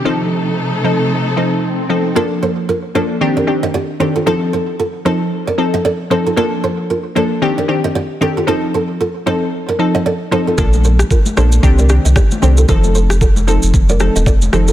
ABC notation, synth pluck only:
X:1
M:4/4
L:1/8
Q:"Swing 16ths" 1/4=114
K:Fmix
V:1 name="Synth pluck"
[F,CEA]2 z [F,CEA] z [F,CEA] z [F,CEA] | [F,B,DA]2 z [F,B,DA] [E,CDG] [E,CDG] z [E,CDG] | [F,CEA]2 z [F,CEA] z [F,CEA] z [F,CEA] | [F,B,DA]2 z [F,B,DA] [E,CDG] [E,CDG] z [E,CDG] |
[F,CEA]2 z [F,CEA] z [F,CEA] z [F,CEA] | [F,B,DA]2 z [F,B,DA] [E,CDG] [E,CDG] z [E,CDG] | [F,CEA]2 z [F,CEA] z [F,CEA] z [F,CEA] |]